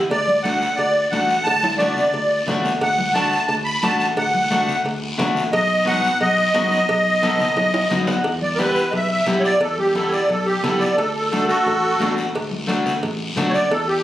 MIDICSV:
0, 0, Header, 1, 5, 480
1, 0, Start_track
1, 0, Tempo, 340329
1, 138, Time_signature, 4, 2, 24, 8
1, 19791, End_track
2, 0, Start_track
2, 0, Title_t, "Accordion"
2, 0, Program_c, 0, 21
2, 153, Note_on_c, 0, 74, 89
2, 591, Note_off_c, 0, 74, 0
2, 603, Note_on_c, 0, 78, 91
2, 1069, Note_on_c, 0, 74, 85
2, 1103, Note_off_c, 0, 78, 0
2, 1526, Note_off_c, 0, 74, 0
2, 1556, Note_on_c, 0, 78, 90
2, 2026, Note_on_c, 0, 81, 110
2, 2058, Note_off_c, 0, 78, 0
2, 2483, Note_off_c, 0, 81, 0
2, 2511, Note_on_c, 0, 74, 79
2, 3422, Note_off_c, 0, 74, 0
2, 3979, Note_on_c, 0, 78, 90
2, 4419, Note_off_c, 0, 78, 0
2, 4429, Note_on_c, 0, 81, 89
2, 4876, Note_off_c, 0, 81, 0
2, 4897, Note_on_c, 0, 81, 84
2, 5011, Note_off_c, 0, 81, 0
2, 5141, Note_on_c, 0, 83, 94
2, 5396, Note_on_c, 0, 81, 95
2, 5399, Note_off_c, 0, 83, 0
2, 5597, Note_off_c, 0, 81, 0
2, 5618, Note_on_c, 0, 81, 88
2, 5731, Note_off_c, 0, 81, 0
2, 5880, Note_on_c, 0, 78, 88
2, 6782, Note_off_c, 0, 78, 0
2, 7795, Note_on_c, 0, 75, 94
2, 8242, Note_off_c, 0, 75, 0
2, 8286, Note_on_c, 0, 78, 109
2, 8727, Note_off_c, 0, 78, 0
2, 8770, Note_on_c, 0, 75, 93
2, 11105, Note_off_c, 0, 75, 0
2, 11884, Note_on_c, 0, 74, 93
2, 12071, Note_on_c, 0, 70, 58
2, 12103, Note_off_c, 0, 70, 0
2, 12113, Note_off_c, 0, 74, 0
2, 12131, Note_on_c, 0, 71, 90
2, 12557, Note_on_c, 0, 75, 58
2, 12588, Note_off_c, 0, 75, 0
2, 12589, Note_off_c, 0, 71, 0
2, 12625, Note_on_c, 0, 76, 87
2, 12833, Note_off_c, 0, 76, 0
2, 12854, Note_on_c, 0, 76, 85
2, 13078, Note_off_c, 0, 76, 0
2, 13254, Note_on_c, 0, 73, 68
2, 13289, Note_off_c, 0, 73, 0
2, 13318, Note_on_c, 0, 74, 98
2, 13551, Note_off_c, 0, 74, 0
2, 13569, Note_on_c, 0, 69, 83
2, 13797, Note_off_c, 0, 69, 0
2, 13805, Note_on_c, 0, 67, 86
2, 14035, Note_off_c, 0, 67, 0
2, 14049, Note_on_c, 0, 69, 78
2, 14226, Note_on_c, 0, 73, 58
2, 14260, Note_off_c, 0, 73, 0
2, 14277, Note_off_c, 0, 69, 0
2, 14280, Note_on_c, 0, 74, 84
2, 14513, Note_off_c, 0, 74, 0
2, 14533, Note_on_c, 0, 69, 76
2, 14751, Note_on_c, 0, 67, 86
2, 14760, Note_off_c, 0, 69, 0
2, 14989, Note_off_c, 0, 67, 0
2, 15003, Note_on_c, 0, 69, 76
2, 15218, Note_on_c, 0, 74, 79
2, 15235, Note_off_c, 0, 69, 0
2, 15457, Note_on_c, 0, 69, 85
2, 15463, Note_off_c, 0, 74, 0
2, 15691, Note_off_c, 0, 69, 0
2, 15712, Note_on_c, 0, 69, 83
2, 15916, Note_off_c, 0, 69, 0
2, 15937, Note_on_c, 0, 69, 87
2, 16172, Note_off_c, 0, 69, 0
2, 16194, Note_on_c, 0, 69, 99
2, 16195, Note_on_c, 0, 66, 84
2, 17106, Note_off_c, 0, 66, 0
2, 17133, Note_off_c, 0, 69, 0
2, 19027, Note_on_c, 0, 73, 70
2, 19063, Note_off_c, 0, 73, 0
2, 19088, Note_on_c, 0, 74, 103
2, 19325, Note_off_c, 0, 74, 0
2, 19341, Note_on_c, 0, 69, 89
2, 19572, Note_off_c, 0, 69, 0
2, 19574, Note_on_c, 0, 67, 88
2, 19791, Note_off_c, 0, 67, 0
2, 19791, End_track
3, 0, Start_track
3, 0, Title_t, "Clean electric guitar"
3, 0, Program_c, 1, 27
3, 630, Note_on_c, 1, 57, 72
3, 638, Note_on_c, 1, 62, 67
3, 645, Note_on_c, 1, 66, 72
3, 958, Note_off_c, 1, 57, 0
3, 963, Note_off_c, 1, 62, 0
3, 963, Note_off_c, 1, 66, 0
3, 1586, Note_on_c, 1, 57, 68
3, 1595, Note_on_c, 1, 62, 67
3, 1605, Note_on_c, 1, 66, 74
3, 1917, Note_off_c, 1, 57, 0
3, 1918, Note_off_c, 1, 62, 0
3, 1918, Note_off_c, 1, 66, 0
3, 2510, Note_on_c, 1, 57, 67
3, 2520, Note_on_c, 1, 62, 64
3, 2529, Note_on_c, 1, 66, 73
3, 2856, Note_off_c, 1, 57, 0
3, 2861, Note_off_c, 1, 62, 0
3, 2865, Note_off_c, 1, 66, 0
3, 3489, Note_on_c, 1, 57, 84
3, 3503, Note_on_c, 1, 62, 69
3, 3506, Note_on_c, 1, 66, 93
3, 3825, Note_off_c, 1, 57, 0
3, 3828, Note_off_c, 1, 62, 0
3, 3832, Note_off_c, 1, 66, 0
3, 4437, Note_on_c, 1, 57, 70
3, 4449, Note_on_c, 1, 62, 66
3, 4455, Note_on_c, 1, 66, 74
3, 4778, Note_off_c, 1, 57, 0
3, 4779, Note_off_c, 1, 66, 0
3, 4781, Note_off_c, 1, 62, 0
3, 5404, Note_on_c, 1, 57, 70
3, 5412, Note_on_c, 1, 62, 66
3, 5420, Note_on_c, 1, 66, 84
3, 5739, Note_off_c, 1, 57, 0
3, 5743, Note_off_c, 1, 62, 0
3, 5747, Note_off_c, 1, 66, 0
3, 6356, Note_on_c, 1, 57, 75
3, 6366, Note_on_c, 1, 66, 74
3, 6368, Note_on_c, 1, 62, 59
3, 6695, Note_off_c, 1, 57, 0
3, 6697, Note_off_c, 1, 62, 0
3, 6698, Note_off_c, 1, 66, 0
3, 7306, Note_on_c, 1, 57, 94
3, 7312, Note_on_c, 1, 62, 66
3, 7316, Note_on_c, 1, 66, 96
3, 7648, Note_off_c, 1, 62, 0
3, 7649, Note_off_c, 1, 57, 0
3, 7652, Note_off_c, 1, 66, 0
3, 8254, Note_on_c, 1, 59, 70
3, 8264, Note_on_c, 1, 63, 55
3, 8266, Note_on_c, 1, 66, 78
3, 8602, Note_off_c, 1, 59, 0
3, 8603, Note_off_c, 1, 63, 0
3, 8607, Note_off_c, 1, 66, 0
3, 9227, Note_on_c, 1, 59, 71
3, 9237, Note_on_c, 1, 63, 68
3, 9240, Note_on_c, 1, 66, 73
3, 9568, Note_off_c, 1, 59, 0
3, 9570, Note_off_c, 1, 66, 0
3, 9572, Note_off_c, 1, 63, 0
3, 10192, Note_on_c, 1, 59, 81
3, 10197, Note_on_c, 1, 63, 62
3, 10202, Note_on_c, 1, 69, 88
3, 10529, Note_off_c, 1, 63, 0
3, 10530, Note_off_c, 1, 59, 0
3, 10534, Note_off_c, 1, 69, 0
3, 11159, Note_on_c, 1, 63, 80
3, 11163, Note_on_c, 1, 59, 77
3, 11166, Note_on_c, 1, 66, 93
3, 11169, Note_on_c, 1, 75, 59
3, 11383, Note_off_c, 1, 75, 0
3, 11390, Note_on_c, 1, 78, 63
3, 11492, Note_off_c, 1, 59, 0
3, 11494, Note_off_c, 1, 63, 0
3, 11497, Note_off_c, 1, 66, 0
3, 11615, Note_off_c, 1, 78, 0
3, 12107, Note_on_c, 1, 59, 70
3, 12120, Note_on_c, 1, 64, 55
3, 12124, Note_on_c, 1, 67, 79
3, 12448, Note_off_c, 1, 59, 0
3, 12451, Note_off_c, 1, 64, 0
3, 12456, Note_off_c, 1, 67, 0
3, 13087, Note_on_c, 1, 67, 81
3, 13088, Note_on_c, 1, 59, 67
3, 13095, Note_on_c, 1, 64, 53
3, 13417, Note_off_c, 1, 59, 0
3, 13417, Note_off_c, 1, 64, 0
3, 13420, Note_off_c, 1, 67, 0
3, 14037, Note_on_c, 1, 59, 72
3, 14046, Note_on_c, 1, 64, 64
3, 14052, Note_on_c, 1, 67, 76
3, 14374, Note_off_c, 1, 59, 0
3, 14379, Note_off_c, 1, 64, 0
3, 14382, Note_off_c, 1, 67, 0
3, 14999, Note_on_c, 1, 59, 73
3, 15007, Note_on_c, 1, 64, 63
3, 15009, Note_on_c, 1, 67, 76
3, 15337, Note_off_c, 1, 59, 0
3, 15338, Note_off_c, 1, 64, 0
3, 15342, Note_off_c, 1, 67, 0
3, 15970, Note_on_c, 1, 57, 70
3, 15974, Note_on_c, 1, 62, 58
3, 15980, Note_on_c, 1, 66, 64
3, 16304, Note_off_c, 1, 57, 0
3, 16307, Note_off_c, 1, 62, 0
3, 16307, Note_off_c, 1, 66, 0
3, 16924, Note_on_c, 1, 57, 81
3, 16940, Note_on_c, 1, 62, 75
3, 16947, Note_on_c, 1, 66, 91
3, 17263, Note_off_c, 1, 57, 0
3, 17270, Note_off_c, 1, 62, 0
3, 17274, Note_off_c, 1, 66, 0
3, 17873, Note_on_c, 1, 57, 77
3, 17883, Note_on_c, 1, 62, 67
3, 17888, Note_on_c, 1, 66, 89
3, 18220, Note_off_c, 1, 57, 0
3, 18221, Note_off_c, 1, 62, 0
3, 18226, Note_off_c, 1, 66, 0
3, 18857, Note_on_c, 1, 57, 82
3, 18866, Note_on_c, 1, 62, 76
3, 18870, Note_on_c, 1, 66, 85
3, 19193, Note_off_c, 1, 57, 0
3, 19198, Note_off_c, 1, 62, 0
3, 19198, Note_off_c, 1, 66, 0
3, 19791, End_track
4, 0, Start_track
4, 0, Title_t, "Fingered electric bass"
4, 0, Program_c, 2, 33
4, 145, Note_on_c, 2, 38, 96
4, 908, Note_off_c, 2, 38, 0
4, 1104, Note_on_c, 2, 38, 95
4, 1484, Note_off_c, 2, 38, 0
4, 1576, Note_on_c, 2, 33, 96
4, 1958, Note_off_c, 2, 33, 0
4, 2055, Note_on_c, 2, 38, 86
4, 2820, Note_off_c, 2, 38, 0
4, 3015, Note_on_c, 2, 38, 94
4, 3396, Note_off_c, 2, 38, 0
4, 3488, Note_on_c, 2, 33, 89
4, 3871, Note_off_c, 2, 33, 0
4, 3962, Note_on_c, 2, 38, 85
4, 4730, Note_off_c, 2, 38, 0
4, 4918, Note_on_c, 2, 38, 96
4, 5303, Note_off_c, 2, 38, 0
4, 5399, Note_on_c, 2, 33, 92
4, 5783, Note_off_c, 2, 33, 0
4, 5877, Note_on_c, 2, 38, 98
4, 6645, Note_off_c, 2, 38, 0
4, 6835, Note_on_c, 2, 38, 101
4, 7220, Note_off_c, 2, 38, 0
4, 7313, Note_on_c, 2, 33, 93
4, 7698, Note_off_c, 2, 33, 0
4, 7795, Note_on_c, 2, 35, 99
4, 8563, Note_off_c, 2, 35, 0
4, 8757, Note_on_c, 2, 35, 96
4, 9140, Note_off_c, 2, 35, 0
4, 9239, Note_on_c, 2, 42, 92
4, 9621, Note_off_c, 2, 42, 0
4, 9716, Note_on_c, 2, 35, 88
4, 10483, Note_off_c, 2, 35, 0
4, 10662, Note_on_c, 2, 35, 98
4, 11051, Note_off_c, 2, 35, 0
4, 11141, Note_on_c, 2, 42, 91
4, 11531, Note_off_c, 2, 42, 0
4, 11619, Note_on_c, 2, 40, 85
4, 12394, Note_off_c, 2, 40, 0
4, 12583, Note_on_c, 2, 35, 90
4, 12972, Note_off_c, 2, 35, 0
4, 13066, Note_on_c, 2, 35, 76
4, 13455, Note_off_c, 2, 35, 0
4, 13541, Note_on_c, 2, 40, 87
4, 14317, Note_off_c, 2, 40, 0
4, 14513, Note_on_c, 2, 35, 101
4, 14900, Note_off_c, 2, 35, 0
4, 14995, Note_on_c, 2, 35, 77
4, 15382, Note_off_c, 2, 35, 0
4, 15479, Note_on_c, 2, 38, 92
4, 16250, Note_off_c, 2, 38, 0
4, 16446, Note_on_c, 2, 33, 93
4, 16831, Note_off_c, 2, 33, 0
4, 16926, Note_on_c, 2, 33, 88
4, 17312, Note_off_c, 2, 33, 0
4, 17417, Note_on_c, 2, 38, 87
4, 18184, Note_off_c, 2, 38, 0
4, 18374, Note_on_c, 2, 33, 96
4, 18759, Note_off_c, 2, 33, 0
4, 18859, Note_on_c, 2, 35, 77
4, 19243, Note_off_c, 2, 35, 0
4, 19331, Note_on_c, 2, 40, 98
4, 19791, Note_off_c, 2, 40, 0
4, 19791, End_track
5, 0, Start_track
5, 0, Title_t, "Drums"
5, 158, Note_on_c, 9, 56, 98
5, 299, Note_off_c, 9, 56, 0
5, 386, Note_on_c, 9, 63, 72
5, 527, Note_off_c, 9, 63, 0
5, 624, Note_on_c, 9, 73, 67
5, 625, Note_on_c, 9, 63, 91
5, 643, Note_on_c, 9, 56, 72
5, 765, Note_off_c, 9, 73, 0
5, 766, Note_off_c, 9, 63, 0
5, 784, Note_off_c, 9, 56, 0
5, 870, Note_on_c, 9, 73, 72
5, 1011, Note_off_c, 9, 73, 0
5, 1109, Note_on_c, 9, 56, 78
5, 1110, Note_on_c, 9, 74, 63
5, 1250, Note_off_c, 9, 56, 0
5, 1251, Note_off_c, 9, 74, 0
5, 1581, Note_on_c, 9, 63, 85
5, 1592, Note_on_c, 9, 73, 59
5, 1596, Note_on_c, 9, 56, 65
5, 1722, Note_off_c, 9, 63, 0
5, 1733, Note_off_c, 9, 73, 0
5, 1737, Note_off_c, 9, 56, 0
5, 1826, Note_on_c, 9, 73, 76
5, 1967, Note_off_c, 9, 73, 0
5, 2067, Note_on_c, 9, 74, 64
5, 2070, Note_on_c, 9, 56, 92
5, 2070, Note_on_c, 9, 65, 71
5, 2208, Note_off_c, 9, 74, 0
5, 2211, Note_off_c, 9, 56, 0
5, 2211, Note_off_c, 9, 65, 0
5, 2295, Note_on_c, 9, 63, 69
5, 2313, Note_on_c, 9, 65, 94
5, 2436, Note_off_c, 9, 63, 0
5, 2454, Note_off_c, 9, 65, 0
5, 2541, Note_on_c, 9, 63, 87
5, 2546, Note_on_c, 9, 56, 72
5, 2546, Note_on_c, 9, 65, 75
5, 2549, Note_on_c, 9, 73, 60
5, 2682, Note_off_c, 9, 63, 0
5, 2687, Note_off_c, 9, 56, 0
5, 2687, Note_off_c, 9, 65, 0
5, 2690, Note_off_c, 9, 73, 0
5, 2774, Note_on_c, 9, 64, 68
5, 2780, Note_on_c, 9, 73, 67
5, 2915, Note_off_c, 9, 64, 0
5, 2921, Note_off_c, 9, 73, 0
5, 3012, Note_on_c, 9, 56, 72
5, 3025, Note_on_c, 9, 74, 69
5, 3153, Note_off_c, 9, 56, 0
5, 3166, Note_off_c, 9, 74, 0
5, 3493, Note_on_c, 9, 56, 68
5, 3493, Note_on_c, 9, 66, 71
5, 3494, Note_on_c, 9, 63, 82
5, 3494, Note_on_c, 9, 64, 87
5, 3498, Note_on_c, 9, 73, 64
5, 3634, Note_off_c, 9, 56, 0
5, 3634, Note_off_c, 9, 66, 0
5, 3635, Note_off_c, 9, 63, 0
5, 3635, Note_off_c, 9, 64, 0
5, 3640, Note_off_c, 9, 73, 0
5, 3720, Note_on_c, 9, 66, 65
5, 3736, Note_on_c, 9, 73, 75
5, 3861, Note_off_c, 9, 66, 0
5, 3877, Note_off_c, 9, 73, 0
5, 3969, Note_on_c, 9, 56, 96
5, 3969, Note_on_c, 9, 74, 68
5, 4110, Note_off_c, 9, 56, 0
5, 4110, Note_off_c, 9, 74, 0
5, 4207, Note_on_c, 9, 63, 76
5, 4348, Note_off_c, 9, 63, 0
5, 4444, Note_on_c, 9, 63, 84
5, 4448, Note_on_c, 9, 73, 61
5, 4450, Note_on_c, 9, 56, 64
5, 4585, Note_off_c, 9, 63, 0
5, 4589, Note_off_c, 9, 73, 0
5, 4591, Note_off_c, 9, 56, 0
5, 4692, Note_on_c, 9, 73, 71
5, 4833, Note_off_c, 9, 73, 0
5, 4917, Note_on_c, 9, 56, 77
5, 4926, Note_on_c, 9, 74, 65
5, 5058, Note_off_c, 9, 56, 0
5, 5067, Note_off_c, 9, 74, 0
5, 5402, Note_on_c, 9, 63, 86
5, 5404, Note_on_c, 9, 56, 67
5, 5407, Note_on_c, 9, 73, 68
5, 5543, Note_off_c, 9, 63, 0
5, 5545, Note_off_c, 9, 56, 0
5, 5548, Note_off_c, 9, 73, 0
5, 5649, Note_on_c, 9, 73, 70
5, 5790, Note_off_c, 9, 73, 0
5, 5882, Note_on_c, 9, 56, 92
5, 5882, Note_on_c, 9, 74, 70
5, 6023, Note_off_c, 9, 56, 0
5, 6023, Note_off_c, 9, 74, 0
5, 6126, Note_on_c, 9, 63, 74
5, 6267, Note_off_c, 9, 63, 0
5, 6365, Note_on_c, 9, 63, 83
5, 6370, Note_on_c, 9, 73, 62
5, 6372, Note_on_c, 9, 56, 68
5, 6506, Note_off_c, 9, 63, 0
5, 6511, Note_off_c, 9, 73, 0
5, 6513, Note_off_c, 9, 56, 0
5, 6603, Note_on_c, 9, 64, 65
5, 6607, Note_on_c, 9, 73, 70
5, 6744, Note_off_c, 9, 64, 0
5, 6748, Note_off_c, 9, 73, 0
5, 6848, Note_on_c, 9, 56, 77
5, 6858, Note_on_c, 9, 74, 68
5, 6990, Note_off_c, 9, 56, 0
5, 6999, Note_off_c, 9, 74, 0
5, 7321, Note_on_c, 9, 63, 84
5, 7321, Note_on_c, 9, 64, 88
5, 7328, Note_on_c, 9, 56, 69
5, 7328, Note_on_c, 9, 66, 70
5, 7334, Note_on_c, 9, 73, 60
5, 7462, Note_off_c, 9, 63, 0
5, 7462, Note_off_c, 9, 64, 0
5, 7469, Note_off_c, 9, 56, 0
5, 7469, Note_off_c, 9, 66, 0
5, 7475, Note_off_c, 9, 73, 0
5, 7564, Note_on_c, 9, 73, 72
5, 7705, Note_off_c, 9, 73, 0
5, 7803, Note_on_c, 9, 56, 95
5, 7809, Note_on_c, 9, 74, 68
5, 7944, Note_off_c, 9, 56, 0
5, 7950, Note_off_c, 9, 74, 0
5, 8284, Note_on_c, 9, 56, 69
5, 8284, Note_on_c, 9, 63, 89
5, 8286, Note_on_c, 9, 73, 60
5, 8425, Note_off_c, 9, 56, 0
5, 8425, Note_off_c, 9, 63, 0
5, 8427, Note_off_c, 9, 73, 0
5, 8520, Note_on_c, 9, 73, 69
5, 8661, Note_off_c, 9, 73, 0
5, 8754, Note_on_c, 9, 56, 80
5, 8758, Note_on_c, 9, 74, 70
5, 8896, Note_off_c, 9, 56, 0
5, 8899, Note_off_c, 9, 74, 0
5, 9233, Note_on_c, 9, 56, 68
5, 9233, Note_on_c, 9, 66, 64
5, 9233, Note_on_c, 9, 73, 61
5, 9240, Note_on_c, 9, 63, 87
5, 9374, Note_off_c, 9, 56, 0
5, 9374, Note_off_c, 9, 66, 0
5, 9374, Note_off_c, 9, 73, 0
5, 9381, Note_off_c, 9, 63, 0
5, 9479, Note_on_c, 9, 73, 77
5, 9620, Note_off_c, 9, 73, 0
5, 9717, Note_on_c, 9, 56, 98
5, 9731, Note_on_c, 9, 74, 64
5, 9858, Note_off_c, 9, 56, 0
5, 9872, Note_off_c, 9, 74, 0
5, 10199, Note_on_c, 9, 56, 70
5, 10201, Note_on_c, 9, 63, 88
5, 10202, Note_on_c, 9, 73, 60
5, 10340, Note_off_c, 9, 56, 0
5, 10342, Note_off_c, 9, 63, 0
5, 10343, Note_off_c, 9, 73, 0
5, 10433, Note_on_c, 9, 64, 66
5, 10439, Note_on_c, 9, 73, 74
5, 10574, Note_off_c, 9, 64, 0
5, 10580, Note_off_c, 9, 73, 0
5, 10673, Note_on_c, 9, 56, 77
5, 10673, Note_on_c, 9, 65, 69
5, 10679, Note_on_c, 9, 74, 67
5, 10814, Note_off_c, 9, 56, 0
5, 10814, Note_off_c, 9, 65, 0
5, 10820, Note_off_c, 9, 74, 0
5, 10917, Note_on_c, 9, 65, 99
5, 11058, Note_off_c, 9, 65, 0
5, 11150, Note_on_c, 9, 56, 68
5, 11156, Note_on_c, 9, 73, 66
5, 11160, Note_on_c, 9, 63, 84
5, 11160, Note_on_c, 9, 64, 87
5, 11291, Note_off_c, 9, 56, 0
5, 11297, Note_off_c, 9, 73, 0
5, 11301, Note_off_c, 9, 63, 0
5, 11301, Note_off_c, 9, 64, 0
5, 11387, Note_on_c, 9, 73, 72
5, 11388, Note_on_c, 9, 66, 93
5, 11528, Note_off_c, 9, 73, 0
5, 11529, Note_off_c, 9, 66, 0
5, 11625, Note_on_c, 9, 56, 94
5, 11633, Note_on_c, 9, 74, 65
5, 11766, Note_off_c, 9, 56, 0
5, 11774, Note_off_c, 9, 74, 0
5, 11873, Note_on_c, 9, 63, 67
5, 12014, Note_off_c, 9, 63, 0
5, 12108, Note_on_c, 9, 63, 87
5, 12112, Note_on_c, 9, 56, 61
5, 12115, Note_on_c, 9, 73, 64
5, 12249, Note_off_c, 9, 63, 0
5, 12253, Note_off_c, 9, 56, 0
5, 12256, Note_off_c, 9, 73, 0
5, 12348, Note_on_c, 9, 73, 74
5, 12489, Note_off_c, 9, 73, 0
5, 12593, Note_on_c, 9, 74, 66
5, 12595, Note_on_c, 9, 56, 75
5, 12734, Note_off_c, 9, 74, 0
5, 12736, Note_off_c, 9, 56, 0
5, 13068, Note_on_c, 9, 73, 63
5, 13069, Note_on_c, 9, 56, 65
5, 13073, Note_on_c, 9, 63, 89
5, 13209, Note_off_c, 9, 73, 0
5, 13210, Note_off_c, 9, 56, 0
5, 13214, Note_off_c, 9, 63, 0
5, 13318, Note_on_c, 9, 73, 69
5, 13459, Note_off_c, 9, 73, 0
5, 13550, Note_on_c, 9, 56, 95
5, 13561, Note_on_c, 9, 74, 64
5, 13691, Note_off_c, 9, 56, 0
5, 13702, Note_off_c, 9, 74, 0
5, 13791, Note_on_c, 9, 63, 73
5, 13932, Note_off_c, 9, 63, 0
5, 14034, Note_on_c, 9, 63, 83
5, 14040, Note_on_c, 9, 56, 66
5, 14041, Note_on_c, 9, 73, 62
5, 14175, Note_off_c, 9, 63, 0
5, 14181, Note_off_c, 9, 56, 0
5, 14182, Note_off_c, 9, 73, 0
5, 14282, Note_on_c, 9, 73, 72
5, 14423, Note_off_c, 9, 73, 0
5, 14518, Note_on_c, 9, 74, 72
5, 14522, Note_on_c, 9, 56, 74
5, 14659, Note_off_c, 9, 74, 0
5, 14663, Note_off_c, 9, 56, 0
5, 15002, Note_on_c, 9, 73, 61
5, 15003, Note_on_c, 9, 63, 81
5, 15003, Note_on_c, 9, 64, 84
5, 15008, Note_on_c, 9, 56, 66
5, 15143, Note_off_c, 9, 73, 0
5, 15144, Note_off_c, 9, 63, 0
5, 15144, Note_off_c, 9, 64, 0
5, 15149, Note_off_c, 9, 56, 0
5, 15251, Note_on_c, 9, 73, 71
5, 15392, Note_off_c, 9, 73, 0
5, 15492, Note_on_c, 9, 56, 98
5, 15495, Note_on_c, 9, 74, 66
5, 15633, Note_off_c, 9, 56, 0
5, 15636, Note_off_c, 9, 74, 0
5, 15971, Note_on_c, 9, 63, 85
5, 15973, Note_on_c, 9, 73, 65
5, 15978, Note_on_c, 9, 56, 66
5, 16112, Note_off_c, 9, 63, 0
5, 16114, Note_off_c, 9, 73, 0
5, 16119, Note_off_c, 9, 56, 0
5, 16212, Note_on_c, 9, 73, 72
5, 16353, Note_off_c, 9, 73, 0
5, 16451, Note_on_c, 9, 74, 69
5, 16466, Note_on_c, 9, 56, 72
5, 16592, Note_off_c, 9, 74, 0
5, 16607, Note_off_c, 9, 56, 0
5, 16925, Note_on_c, 9, 73, 67
5, 16934, Note_on_c, 9, 63, 86
5, 16951, Note_on_c, 9, 56, 62
5, 16951, Note_on_c, 9, 66, 69
5, 17066, Note_off_c, 9, 73, 0
5, 17075, Note_off_c, 9, 63, 0
5, 17092, Note_off_c, 9, 56, 0
5, 17092, Note_off_c, 9, 66, 0
5, 17166, Note_on_c, 9, 73, 73
5, 17307, Note_off_c, 9, 73, 0
5, 17418, Note_on_c, 9, 74, 68
5, 17425, Note_on_c, 9, 56, 95
5, 17559, Note_off_c, 9, 74, 0
5, 17566, Note_off_c, 9, 56, 0
5, 17644, Note_on_c, 9, 63, 68
5, 17785, Note_off_c, 9, 63, 0
5, 17887, Note_on_c, 9, 63, 89
5, 17900, Note_on_c, 9, 73, 63
5, 17903, Note_on_c, 9, 56, 67
5, 18028, Note_off_c, 9, 63, 0
5, 18041, Note_off_c, 9, 73, 0
5, 18045, Note_off_c, 9, 56, 0
5, 18129, Note_on_c, 9, 64, 67
5, 18136, Note_on_c, 9, 73, 72
5, 18270, Note_off_c, 9, 64, 0
5, 18277, Note_off_c, 9, 73, 0
5, 18376, Note_on_c, 9, 56, 78
5, 18380, Note_on_c, 9, 74, 69
5, 18517, Note_off_c, 9, 56, 0
5, 18521, Note_off_c, 9, 74, 0
5, 18853, Note_on_c, 9, 63, 84
5, 18853, Note_on_c, 9, 64, 87
5, 18860, Note_on_c, 9, 73, 59
5, 18863, Note_on_c, 9, 56, 65
5, 18994, Note_off_c, 9, 63, 0
5, 18994, Note_off_c, 9, 64, 0
5, 19001, Note_off_c, 9, 73, 0
5, 19004, Note_off_c, 9, 56, 0
5, 19103, Note_on_c, 9, 73, 70
5, 19244, Note_off_c, 9, 73, 0
5, 19343, Note_on_c, 9, 56, 99
5, 19351, Note_on_c, 9, 74, 67
5, 19484, Note_off_c, 9, 56, 0
5, 19492, Note_off_c, 9, 74, 0
5, 19791, End_track
0, 0, End_of_file